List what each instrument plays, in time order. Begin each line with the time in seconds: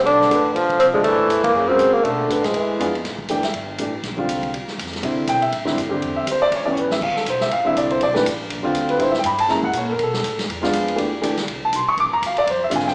0.06 upright bass B1, trombone D3, tenor saxophone D4, kick, ride
0.21 snare
0.31 upright bass A1, upright piano A3 D4 G4 B4, kick, hi-hat pedal, ride
0.54 upright bass A#1, trombone F3, kick, ride
0.69 kick, ride
0.80 upright bass C2, tenor saxophone C4, kick, hi-hat pedal, ride
0.93 tenor saxophone G#3, upright piano A3 D4 G4 D5, kick
1.04 upright bass A1, trombone E3, tenor saxophone A3, kick, ride
1.19 kick
1.29 upright bass E2, kick, hi-hat pedal, ride
1.44 tenor saxophone A#3, kick, ride
1.53 upright bass F#2, trombone C#3
1.68 upright piano G#3 C#4 F#4 A#4, tenor saxophone C4
1.79 upright bass C#3, kick, hi-hat pedal, ride
1.93 tenor saxophone A#3
2.03 upright bass B2, trombone D3, tenor saxophone A3, kick, ride
2.29 upright bass A2, upright piano A3 D4 G4 B4, kick, hi-hat pedal, ride
2.43 trombone F3, tenor saxophone G#3, snare, ride
2.54 upright bass E2, trombone E3, kick, ride
2.79 upright bass F2, upright piano B3 D4 F4 G#4, kick, hi-hat pedal, ride
2.95 ride
3.04 upright bass A1, kick, snare, ride
3.18 kick
3.29 upright bass F1, upright piano E3 A3 D4 G4 G5, kick, hi-hat pedal, ride
3.43 upright piano E5, snare, ride
3.53 upright bass G1, kick, ride
3.78 upright bass A1, upright piano E3 A3 D4 G4, kick, hi-hat pedal, ride
4.03 upright bass A#1, kick, snare, ride
4.17 upright piano D3 G3 C4 F4, kick
4.29 upright bass C2, kick, hi-hat pedal, ride
4.43 kick, ride
4.53 upright bass D2, kick, ride
4.68 snare
4.78 upright bass F2, kick, hi-hat pedal, ride
4.86 snare
4.93 snare, ride
5.03 upright bass C3, upright piano D3 G3 C4 E4, kick, ride
5.27 upright bass B2, upright piano G5, kick, hi-hat pedal, ride
5.42 upright piano E5, ride
5.52 upright bass A2, kick, ride
5.65 upright piano D3 G3 C4 E4, snare
5.77 upright bass G2, kick, hi-hat pedal, ride
5.89 upright piano D3 G3 C4 G4
6.02 upright bass E2, kick, ride
6.16 upright piano E5
6.26 upright bass D2, kick, hi-hat pedal, ride
6.31 upright piano C5
6.42 upright piano D5
6.51 upright bass C#2, kick, ride
6.56 upright piano C#5
6.65 upright piano E3 G3 B3 C#4 D5
6.73 upright bass A1, upright piano C#5, hi-hat pedal
6.79 upright piano B4
6.91 upright piano E5, snare
7.01 upright bass D2, upright piano F5, kick, crash
7.16 upright piano A4, snare
7.26 upright bass B1, kick, hi-hat pedal, ride
7.30 upright piano C5
7.41 upright piano E5, snare
7.51 upright bass A1, upright piano F5, kick, ride
7.65 upright piano D3 G3 C4 E4 E5
7.76 upright bass C2, upright piano D5, kick, hi-hat pedal, ride
7.90 upright piano C5, ride
8.00 upright bass B1, upright piano D5, kick, ride
8.14 upright piano E3 A3 D4 G4 B4, snare
8.25 upright bass A1, kick, hi-hat pedal, ride
8.50 upright bass A#1, kick, ride
8.58 upright bass G#1
8.63 upright bass F1, upright piano D3 G3 C4 F4
8.74 upright bass D2, kick, hi-hat pedal, ride
8.89 upright piano B4, ride
8.98 upright bass A2, upright piano D3 G3 C4 E4, kick, ride
9.02 upright piano C5
9.11 upright piano E5, snare
9.19 upright piano G5
9.24 upright bass G2, upright piano B5, kick, hi-hat pedal, ride
9.38 upright piano A5, ride
9.48 upright bass F#2, upright piano G#3 A#3 C#4 E4 A#5, kick, snare
9.63 upright piano F#5, kick
9.73 upright bass A#2, kick, hi-hat pedal, ride
9.77 upright piano C#5
9.92 upright piano A#4
9.98 upright bass B2, kick, ride
10.03 upright piano A4
10.14 snare
10.23 upright bass A2, kick, hi-hat pedal, ride
10.39 snare, ride
10.49 upright bass E2, kick, ride
10.62 upright piano G#3 B3 D4 F4, snare
10.73 upright bass F2, kick, hi-hat pedal, ride
10.88 ride
10.96 upright bass E2, upright piano E3 A3 D4 G4, kick, ride
11.21 upright bass D2, upright piano E3 A3 D4 G4, kick, hi-hat pedal, ride
11.37 snare, ride
11.47 upright bass C2, kick, ride
11.65 upright piano A5
11.72 upright bass B1, upright piano C6, kick, hi-hat pedal, ride
11.87 upright piano C#6, muted upright bass stroke
11.97 upright bass A#1, upright piano D6, kick, ride
12.06 upright bass G#1
12.13 upright bass F1, upright piano A#5
12.22 upright bass D2, kick, hi-hat pedal, ride
12.26 upright piano F5
12.37 upright piano D5, ride
12.47 upright bass F2, upright piano C5, kick, ride
12.64 upright piano E5
12.70 upright bass G#2, upright piano D3 G3 C4 F4, kick, hi-hat pedal, ride
12.76 upright piano G#5, snare
12.88 upright piano G5, snare